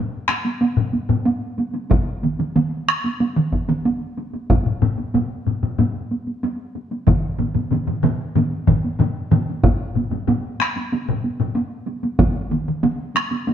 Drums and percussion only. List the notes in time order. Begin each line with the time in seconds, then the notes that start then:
0.28 taiko rim, taiko high
0.45 taiko high
0.61 taiko high
0.77 taiko low-mid
0.93 taiko high
1.09 taiko low-mid, taiko high
1.26 taiko high
1.58 taiko high
1.74 taiko high
1.90 taiko, taiko mid, taiko high
2.23 taiko mid, taiko high
2.39 taiko mid, taiko high
2.56 taiko mid, taiko high
2.88 taiko rim
3.04 taiko high
3.20 taiko high
3.36 taiko mid
3.52 taiko, taiko high
3.69 taiko mid, taiko high
3.85 taiko high
4.17 taiko high
4.34 taiko high
4.50 taiko, taiko low-mid, taiko high
4.66 taiko low-mid
4.82 taiko low-mid, taiko high
4.98 taiko high
5.14 taiko low-mid, taiko high
5.46 taiko low-mid, taiko high
5.63 taiko low-mid, taiko high
5.78 taiko low-mid, taiko high
6.11 taiko high
6.27 taiko high
6.43 taiko high
6.75 taiko high
6.91 taiko high
7.07 taiko, taiko low-mid, taiko mid, taiko high
7.39 taiko low-mid, taiko mid, taiko high
7.55 taiko low-mid, taiko mid, taiko high
7.71 taiko low-mid, taiko mid, taiko high
7.87 taiko low-mid, taiko mid
8.03 taiko low-mid, taiko mid, taiko high
8.35 taiko low-mid, taiko mid, taiko high
8.67 taiko, taiko low-mid, taiko mid, taiko high
8.85 taiko high
8.99 taiko low-mid, taiko mid, taiko high
9.31 taiko low-mid, taiko mid, taiko high
9.50 taiko high
9.64 taiko, taiko low-mid, taiko high
9.95 taiko low-mid, taiko high
10.11 taiko low-mid, taiko high
10.27 taiko low-mid, taiko high
10.60 taiko rim, taiko high
10.76 taiko high
10.92 taiko high
11.09 taiko low-mid
11.24 taiko high
11.40 taiko low-mid, taiko high
11.55 taiko high
11.87 taiko high
12.03 taiko high
12.19 taiko, taiko mid, taiko high
12.51 taiko mid, taiko high
12.68 taiko mid
12.83 taiko mid, taiko high
13.15 taiko rim, taiko high
13.31 taiko high
13.47 taiko high